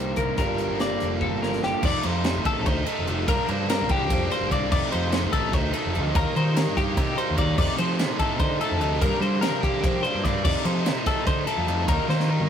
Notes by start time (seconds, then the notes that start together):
Already playing: C2 G2 C3 G3 A#3 C4 D#4 C5
0.16 C2 A#4, kick, closed hi-hat
0.38 G1 G2 D3 G3 A#3 D4 F4 A#4, kick, closed hi-hat
0.42 A#4
0.58 G3, closed hi-hat
0.68 G1
0.79 A#3 D5, snare, closed hi-hat
1.00 F1 D4, snare, closed hi-hat
1.09 F4
1.21 D3 A4, kick
1.32 G1
1.41 F4 A#4, snare
1.53 snare
1.63 G1 G4, snare
1.83 F1 F2 C3 D#3 A3 D#4 D5, kick, crash
2.03 F2 D#3 A3 D#4 C5, snare, ride
2.23 C3 D#3 A3 D#4, snare, ride
2.36 A1
2.43 D#3 A3 D#4 A4, kick, ride
2.66 D2 C5, kick, ride
2.85 D#3 A3 D#4 A4, ride
2.98 F1
3.07 F1 F2 C3 D#3 A3 D#4, ride
3.25 G1 G2 D3 G3 A#3 D4 A#4, kick, ride
3.46 G2 G3 A#3 D4 C5, ride
3.69 D3 G3 A#3 D4 A#4, snare, ride
3.81 C2
3.89 G3 A#3 D4 G4, kick, ride
4.10 F2, kick, ride
4.29 G3 A#3 D4 C5, snare, ride
4.41 G1
4.51 C2 G2 D3 G3 A#3 D4 D5, kick, ride
4.71 F1 F2 C3 D#3 A3 D#4 D5, kick, crash
4.91 F2 D#3 A3 D#4 C5, ride
5.11 C3 D#3 A3 D#4, snare, ride
5.24 A1
5.31 D#3 A3 D#4 A4, kick, ride
5.53 D2 C5, kick, snare, ride
5.73 D#3 A3 D#4 A4, ride
5.85 F1
5.94 D2 F2 C3 D#3 A3 D#4, ride
6.13 D#2 D#3 G3 A#3 D#4 A#4, kick, ride
6.34 D#3 G3 A#3 D#4 C5, ride
6.54 D#3 G3 A#3 D#4 A#4, snare, ride
6.67 G2
6.75 G3 A#3 D#4 G4, kick, snare, ride
6.97 C3, kick, ride
7.15 G3 A#3 D#4 C5, ride
7.30 D#2
7.35 D#2 D#3 G3 A#3 D#4 D5, kick, ride
7.57 F2 C3 D#3 A3 D#4 D5, kick, crash
7.77 D#3 F3 A3 D#4 C5, ride
7.98 C3 D#3 A3 D#4, snare, ride
8.10 A2
8.18 D#3 A3 D#4 A4, kick, ride
8.39 D3 C5, kick, ride
8.60 D#3 A3 D#4 A4, ride
8.71 F2
8.80 D2 F2 C3 D#3 A3 D#4, ride
9.00 G2 D3 G3 A#3 D4 A#4, kick, ride
9.20 G3 A#3 D4 C5, ride
9.41 D3 G3 A#3 D4 A#4, snare, ride
9.52 C3
9.62 G3 A#3 D4 G4, kick, ride
9.84 F3, kick, ride
10.03 A#3 D4 C5, ride
10.08 G3
10.15 G2
10.24 G2 D3 G3 A#3 D4 D5, kick, snare, ride
10.44 F2 C3 D#3 A3 D#4 D5, kick, crash
10.65 D#3 F3 A3 D#4 C5, ride
10.85 C3 D#3 A3 D#4, snare, ride
10.96 A2
11.06 D#3 A3 D#4 A4, kick, snare, ride
11.27 D3 C5, kick, snare, ride
11.47 D#3 A3 D#4 A4, snare, ride
11.57 F2
11.67 F2 C3 D#3 A3 D#4, ride
11.87 D#2 D#3 G3 A#3 D#4 A#4, kick, ride
12.08 D#3 G3 A#3 D#4 C5, snare
12.20 snare
12.28 D#3 G3 A#3 D#4 A#4
12.39 G2, high tom